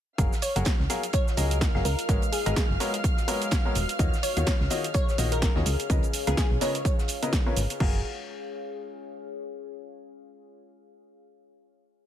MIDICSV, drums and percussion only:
0, 0, Header, 1, 2, 480
1, 0, Start_track
1, 0, Key_signature, 6, "major"
1, 0, Tempo, 476190
1, 185, Time_signature, 4, 2, 24, 8
1, 12161, End_track
2, 0, Start_track
2, 0, Title_t, "Drums"
2, 185, Note_on_c, 9, 36, 122
2, 185, Note_on_c, 9, 42, 59
2, 189, Note_off_c, 9, 42, 0
2, 189, Note_on_c, 9, 42, 79
2, 191, Note_on_c, 9, 82, 47
2, 286, Note_off_c, 9, 36, 0
2, 289, Note_off_c, 9, 42, 0
2, 292, Note_off_c, 9, 82, 0
2, 326, Note_on_c, 9, 38, 65
2, 329, Note_on_c, 9, 82, 33
2, 422, Note_on_c, 9, 42, 71
2, 426, Note_on_c, 9, 46, 108
2, 427, Note_off_c, 9, 38, 0
2, 430, Note_off_c, 9, 82, 0
2, 432, Note_on_c, 9, 82, 83
2, 523, Note_off_c, 9, 42, 0
2, 527, Note_off_c, 9, 46, 0
2, 533, Note_off_c, 9, 82, 0
2, 564, Note_on_c, 9, 42, 66
2, 570, Note_on_c, 9, 82, 34
2, 655, Note_off_c, 9, 42, 0
2, 655, Note_on_c, 9, 42, 91
2, 663, Note_on_c, 9, 38, 105
2, 665, Note_on_c, 9, 36, 127
2, 666, Note_off_c, 9, 38, 0
2, 666, Note_off_c, 9, 42, 0
2, 666, Note_on_c, 9, 38, 127
2, 666, Note_on_c, 9, 42, 61
2, 671, Note_off_c, 9, 82, 0
2, 672, Note_on_c, 9, 82, 46
2, 765, Note_off_c, 9, 36, 0
2, 767, Note_off_c, 9, 38, 0
2, 767, Note_off_c, 9, 42, 0
2, 772, Note_off_c, 9, 82, 0
2, 803, Note_on_c, 9, 38, 43
2, 904, Note_off_c, 9, 38, 0
2, 905, Note_on_c, 9, 42, 60
2, 906, Note_on_c, 9, 46, 97
2, 909, Note_on_c, 9, 38, 46
2, 911, Note_on_c, 9, 82, 79
2, 1006, Note_off_c, 9, 42, 0
2, 1006, Note_off_c, 9, 46, 0
2, 1010, Note_off_c, 9, 38, 0
2, 1012, Note_off_c, 9, 82, 0
2, 1043, Note_on_c, 9, 42, 72
2, 1049, Note_on_c, 9, 82, 33
2, 1140, Note_off_c, 9, 42, 0
2, 1140, Note_on_c, 9, 42, 90
2, 1144, Note_on_c, 9, 36, 120
2, 1145, Note_off_c, 9, 42, 0
2, 1145, Note_on_c, 9, 42, 59
2, 1149, Note_off_c, 9, 82, 0
2, 1151, Note_on_c, 9, 82, 47
2, 1245, Note_off_c, 9, 36, 0
2, 1246, Note_off_c, 9, 42, 0
2, 1251, Note_off_c, 9, 82, 0
2, 1283, Note_on_c, 9, 38, 54
2, 1289, Note_on_c, 9, 82, 32
2, 1383, Note_on_c, 9, 42, 58
2, 1384, Note_off_c, 9, 38, 0
2, 1386, Note_on_c, 9, 46, 109
2, 1390, Note_off_c, 9, 82, 0
2, 1392, Note_on_c, 9, 82, 79
2, 1484, Note_off_c, 9, 42, 0
2, 1487, Note_off_c, 9, 46, 0
2, 1492, Note_off_c, 9, 82, 0
2, 1524, Note_on_c, 9, 42, 69
2, 1530, Note_on_c, 9, 82, 32
2, 1624, Note_on_c, 9, 36, 121
2, 1625, Note_off_c, 9, 42, 0
2, 1625, Note_on_c, 9, 42, 96
2, 1626, Note_off_c, 9, 42, 0
2, 1626, Note_on_c, 9, 42, 57
2, 1627, Note_on_c, 9, 38, 127
2, 1630, Note_off_c, 9, 82, 0
2, 1632, Note_on_c, 9, 82, 45
2, 1725, Note_off_c, 9, 36, 0
2, 1727, Note_off_c, 9, 42, 0
2, 1728, Note_off_c, 9, 38, 0
2, 1733, Note_off_c, 9, 82, 0
2, 1766, Note_on_c, 9, 38, 52
2, 1865, Note_on_c, 9, 46, 98
2, 1867, Note_off_c, 9, 38, 0
2, 1870, Note_on_c, 9, 42, 69
2, 1871, Note_on_c, 9, 82, 80
2, 1966, Note_off_c, 9, 46, 0
2, 1971, Note_off_c, 9, 42, 0
2, 1972, Note_off_c, 9, 82, 0
2, 2002, Note_on_c, 9, 42, 70
2, 2008, Note_on_c, 9, 82, 33
2, 2103, Note_off_c, 9, 42, 0
2, 2104, Note_on_c, 9, 36, 127
2, 2105, Note_on_c, 9, 42, 56
2, 2106, Note_off_c, 9, 42, 0
2, 2106, Note_on_c, 9, 42, 80
2, 2109, Note_off_c, 9, 82, 0
2, 2110, Note_on_c, 9, 82, 47
2, 2205, Note_off_c, 9, 36, 0
2, 2207, Note_off_c, 9, 42, 0
2, 2211, Note_off_c, 9, 82, 0
2, 2239, Note_on_c, 9, 42, 49
2, 2248, Note_on_c, 9, 82, 32
2, 2340, Note_off_c, 9, 42, 0
2, 2343, Note_on_c, 9, 42, 66
2, 2345, Note_on_c, 9, 46, 118
2, 2349, Note_off_c, 9, 82, 0
2, 2350, Note_on_c, 9, 82, 77
2, 2444, Note_off_c, 9, 42, 0
2, 2445, Note_off_c, 9, 46, 0
2, 2451, Note_off_c, 9, 82, 0
2, 2483, Note_on_c, 9, 42, 66
2, 2488, Note_on_c, 9, 82, 32
2, 2583, Note_off_c, 9, 42, 0
2, 2583, Note_on_c, 9, 38, 117
2, 2584, Note_on_c, 9, 36, 127
2, 2585, Note_on_c, 9, 42, 56
2, 2586, Note_off_c, 9, 38, 0
2, 2586, Note_off_c, 9, 42, 0
2, 2586, Note_on_c, 9, 38, 127
2, 2586, Note_on_c, 9, 42, 91
2, 2589, Note_off_c, 9, 82, 0
2, 2591, Note_on_c, 9, 82, 48
2, 2685, Note_off_c, 9, 36, 0
2, 2687, Note_off_c, 9, 38, 0
2, 2687, Note_off_c, 9, 42, 0
2, 2692, Note_off_c, 9, 82, 0
2, 2826, Note_on_c, 9, 42, 73
2, 2826, Note_on_c, 9, 46, 98
2, 2831, Note_on_c, 9, 82, 76
2, 2926, Note_off_c, 9, 46, 0
2, 2927, Note_off_c, 9, 42, 0
2, 2932, Note_off_c, 9, 82, 0
2, 2962, Note_on_c, 9, 42, 66
2, 2968, Note_on_c, 9, 82, 31
2, 3063, Note_off_c, 9, 42, 0
2, 3065, Note_on_c, 9, 36, 126
2, 3065, Note_on_c, 9, 42, 57
2, 3068, Note_off_c, 9, 42, 0
2, 3068, Note_on_c, 9, 42, 82
2, 3069, Note_off_c, 9, 82, 0
2, 3071, Note_on_c, 9, 82, 45
2, 3165, Note_off_c, 9, 36, 0
2, 3169, Note_off_c, 9, 42, 0
2, 3172, Note_off_c, 9, 82, 0
2, 3194, Note_on_c, 9, 38, 51
2, 3209, Note_on_c, 9, 82, 30
2, 3295, Note_off_c, 9, 38, 0
2, 3306, Note_on_c, 9, 46, 112
2, 3307, Note_on_c, 9, 42, 69
2, 3309, Note_off_c, 9, 82, 0
2, 3311, Note_on_c, 9, 82, 77
2, 3406, Note_off_c, 9, 46, 0
2, 3408, Note_off_c, 9, 42, 0
2, 3412, Note_off_c, 9, 82, 0
2, 3441, Note_on_c, 9, 42, 38
2, 3444, Note_off_c, 9, 42, 0
2, 3444, Note_on_c, 9, 42, 67
2, 3449, Note_on_c, 9, 82, 34
2, 3541, Note_off_c, 9, 42, 0
2, 3541, Note_on_c, 9, 38, 124
2, 3541, Note_on_c, 9, 42, 87
2, 3545, Note_on_c, 9, 36, 127
2, 3546, Note_off_c, 9, 38, 0
2, 3546, Note_off_c, 9, 42, 0
2, 3546, Note_on_c, 9, 38, 122
2, 3546, Note_on_c, 9, 42, 54
2, 3550, Note_off_c, 9, 82, 0
2, 3551, Note_on_c, 9, 82, 44
2, 3645, Note_off_c, 9, 36, 0
2, 3646, Note_off_c, 9, 42, 0
2, 3647, Note_off_c, 9, 38, 0
2, 3652, Note_off_c, 9, 82, 0
2, 3782, Note_on_c, 9, 42, 69
2, 3785, Note_on_c, 9, 46, 98
2, 3790, Note_on_c, 9, 82, 77
2, 3883, Note_off_c, 9, 42, 0
2, 3885, Note_off_c, 9, 46, 0
2, 3891, Note_off_c, 9, 82, 0
2, 3923, Note_on_c, 9, 42, 67
2, 3929, Note_on_c, 9, 82, 32
2, 4024, Note_off_c, 9, 42, 0
2, 4024, Note_on_c, 9, 42, 53
2, 4025, Note_on_c, 9, 36, 125
2, 4028, Note_off_c, 9, 42, 0
2, 4028, Note_on_c, 9, 42, 87
2, 4030, Note_off_c, 9, 82, 0
2, 4030, Note_on_c, 9, 82, 48
2, 4125, Note_off_c, 9, 36, 0
2, 4129, Note_off_c, 9, 42, 0
2, 4131, Note_off_c, 9, 82, 0
2, 4169, Note_on_c, 9, 82, 33
2, 4173, Note_on_c, 9, 38, 52
2, 4265, Note_on_c, 9, 46, 120
2, 4266, Note_on_c, 9, 42, 68
2, 4270, Note_off_c, 9, 82, 0
2, 4271, Note_on_c, 9, 82, 83
2, 4274, Note_off_c, 9, 38, 0
2, 4366, Note_off_c, 9, 46, 0
2, 4367, Note_off_c, 9, 42, 0
2, 4372, Note_off_c, 9, 82, 0
2, 4402, Note_on_c, 9, 42, 61
2, 4408, Note_on_c, 9, 82, 32
2, 4501, Note_on_c, 9, 38, 113
2, 4502, Note_off_c, 9, 42, 0
2, 4502, Note_on_c, 9, 42, 85
2, 4505, Note_off_c, 9, 38, 0
2, 4505, Note_off_c, 9, 42, 0
2, 4505, Note_on_c, 9, 36, 127
2, 4505, Note_on_c, 9, 38, 127
2, 4505, Note_on_c, 9, 42, 58
2, 4509, Note_off_c, 9, 82, 0
2, 4510, Note_on_c, 9, 82, 49
2, 4605, Note_off_c, 9, 42, 0
2, 4606, Note_off_c, 9, 36, 0
2, 4606, Note_off_c, 9, 38, 0
2, 4611, Note_off_c, 9, 82, 0
2, 4642, Note_on_c, 9, 38, 47
2, 4740, Note_on_c, 9, 42, 68
2, 4743, Note_off_c, 9, 38, 0
2, 4745, Note_on_c, 9, 46, 100
2, 4750, Note_on_c, 9, 82, 77
2, 4841, Note_off_c, 9, 42, 0
2, 4845, Note_off_c, 9, 46, 0
2, 4851, Note_off_c, 9, 82, 0
2, 4882, Note_on_c, 9, 42, 67
2, 4888, Note_on_c, 9, 82, 31
2, 4980, Note_off_c, 9, 42, 0
2, 4980, Note_on_c, 9, 42, 87
2, 4984, Note_off_c, 9, 42, 0
2, 4984, Note_on_c, 9, 42, 57
2, 4985, Note_on_c, 9, 36, 127
2, 4989, Note_off_c, 9, 82, 0
2, 4990, Note_on_c, 9, 82, 45
2, 5085, Note_off_c, 9, 36, 0
2, 5085, Note_off_c, 9, 42, 0
2, 5091, Note_off_c, 9, 82, 0
2, 5123, Note_on_c, 9, 38, 55
2, 5128, Note_on_c, 9, 82, 29
2, 5224, Note_off_c, 9, 38, 0
2, 5224, Note_on_c, 9, 46, 111
2, 5227, Note_on_c, 9, 42, 61
2, 5229, Note_off_c, 9, 82, 0
2, 5230, Note_on_c, 9, 82, 72
2, 5325, Note_off_c, 9, 46, 0
2, 5328, Note_off_c, 9, 42, 0
2, 5331, Note_off_c, 9, 82, 0
2, 5362, Note_on_c, 9, 42, 64
2, 5368, Note_on_c, 9, 82, 32
2, 5461, Note_on_c, 9, 38, 113
2, 5463, Note_off_c, 9, 42, 0
2, 5464, Note_off_c, 9, 38, 0
2, 5464, Note_on_c, 9, 38, 123
2, 5464, Note_on_c, 9, 42, 100
2, 5465, Note_on_c, 9, 36, 122
2, 5469, Note_off_c, 9, 82, 0
2, 5470, Note_on_c, 9, 82, 45
2, 5565, Note_off_c, 9, 38, 0
2, 5565, Note_off_c, 9, 42, 0
2, 5566, Note_off_c, 9, 36, 0
2, 5570, Note_off_c, 9, 82, 0
2, 5602, Note_on_c, 9, 38, 51
2, 5703, Note_off_c, 9, 38, 0
2, 5704, Note_on_c, 9, 46, 99
2, 5706, Note_on_c, 9, 42, 72
2, 5710, Note_on_c, 9, 82, 78
2, 5805, Note_off_c, 9, 46, 0
2, 5807, Note_off_c, 9, 42, 0
2, 5811, Note_off_c, 9, 82, 0
2, 5843, Note_on_c, 9, 42, 68
2, 5849, Note_on_c, 9, 82, 32
2, 5944, Note_off_c, 9, 42, 0
2, 5945, Note_on_c, 9, 36, 127
2, 5945, Note_on_c, 9, 42, 55
2, 5946, Note_off_c, 9, 42, 0
2, 5946, Note_on_c, 9, 42, 100
2, 5950, Note_off_c, 9, 82, 0
2, 5951, Note_on_c, 9, 82, 48
2, 6046, Note_off_c, 9, 36, 0
2, 6047, Note_off_c, 9, 42, 0
2, 6051, Note_off_c, 9, 82, 0
2, 6076, Note_on_c, 9, 42, 40
2, 6089, Note_on_c, 9, 82, 32
2, 6177, Note_off_c, 9, 42, 0
2, 6183, Note_on_c, 9, 42, 68
2, 6184, Note_on_c, 9, 46, 118
2, 6189, Note_off_c, 9, 82, 0
2, 6190, Note_on_c, 9, 82, 81
2, 6284, Note_off_c, 9, 42, 0
2, 6285, Note_off_c, 9, 46, 0
2, 6291, Note_off_c, 9, 82, 0
2, 6322, Note_on_c, 9, 42, 61
2, 6328, Note_on_c, 9, 82, 32
2, 6423, Note_off_c, 9, 42, 0
2, 6425, Note_on_c, 9, 36, 127
2, 6425, Note_on_c, 9, 42, 53
2, 6426, Note_on_c, 9, 38, 127
2, 6427, Note_off_c, 9, 42, 0
2, 6427, Note_on_c, 9, 42, 85
2, 6429, Note_off_c, 9, 38, 0
2, 6429, Note_off_c, 9, 82, 0
2, 6429, Note_on_c, 9, 38, 125
2, 6431, Note_on_c, 9, 82, 48
2, 6526, Note_off_c, 9, 36, 0
2, 6527, Note_off_c, 9, 42, 0
2, 6530, Note_off_c, 9, 38, 0
2, 6532, Note_off_c, 9, 82, 0
2, 6656, Note_on_c, 9, 38, 58
2, 6665, Note_on_c, 9, 46, 98
2, 6669, Note_on_c, 9, 42, 66
2, 6671, Note_on_c, 9, 82, 80
2, 6757, Note_off_c, 9, 38, 0
2, 6766, Note_off_c, 9, 46, 0
2, 6770, Note_off_c, 9, 42, 0
2, 6771, Note_off_c, 9, 82, 0
2, 6804, Note_on_c, 9, 42, 62
2, 6809, Note_on_c, 9, 82, 32
2, 6904, Note_off_c, 9, 42, 0
2, 6905, Note_on_c, 9, 36, 127
2, 6906, Note_on_c, 9, 42, 54
2, 6907, Note_off_c, 9, 42, 0
2, 6907, Note_on_c, 9, 42, 81
2, 6910, Note_off_c, 9, 82, 0
2, 6911, Note_on_c, 9, 82, 46
2, 7006, Note_off_c, 9, 36, 0
2, 7008, Note_off_c, 9, 42, 0
2, 7012, Note_off_c, 9, 82, 0
2, 7038, Note_on_c, 9, 38, 52
2, 7049, Note_on_c, 9, 82, 30
2, 7137, Note_on_c, 9, 42, 72
2, 7139, Note_off_c, 9, 38, 0
2, 7145, Note_on_c, 9, 46, 112
2, 7150, Note_off_c, 9, 82, 0
2, 7151, Note_on_c, 9, 82, 79
2, 7238, Note_off_c, 9, 42, 0
2, 7246, Note_off_c, 9, 46, 0
2, 7252, Note_off_c, 9, 82, 0
2, 7283, Note_on_c, 9, 42, 64
2, 7287, Note_off_c, 9, 42, 0
2, 7287, Note_on_c, 9, 42, 40
2, 7289, Note_on_c, 9, 82, 33
2, 7385, Note_on_c, 9, 36, 123
2, 7386, Note_off_c, 9, 42, 0
2, 7386, Note_on_c, 9, 38, 117
2, 7386, Note_on_c, 9, 42, 54
2, 7387, Note_off_c, 9, 38, 0
2, 7387, Note_off_c, 9, 42, 0
2, 7387, Note_on_c, 9, 38, 118
2, 7387, Note_on_c, 9, 42, 102
2, 7390, Note_off_c, 9, 82, 0
2, 7391, Note_on_c, 9, 82, 45
2, 7486, Note_off_c, 9, 36, 0
2, 7488, Note_off_c, 9, 38, 0
2, 7488, Note_off_c, 9, 42, 0
2, 7492, Note_off_c, 9, 82, 0
2, 7625, Note_on_c, 9, 46, 100
2, 7626, Note_on_c, 9, 42, 67
2, 7631, Note_on_c, 9, 82, 83
2, 7726, Note_off_c, 9, 46, 0
2, 7727, Note_off_c, 9, 42, 0
2, 7732, Note_off_c, 9, 82, 0
2, 7764, Note_on_c, 9, 42, 61
2, 7770, Note_on_c, 9, 82, 32
2, 7865, Note_off_c, 9, 42, 0
2, 7866, Note_on_c, 9, 36, 114
2, 7866, Note_on_c, 9, 49, 97
2, 7870, Note_off_c, 9, 82, 0
2, 7966, Note_off_c, 9, 49, 0
2, 7967, Note_off_c, 9, 36, 0
2, 12161, End_track
0, 0, End_of_file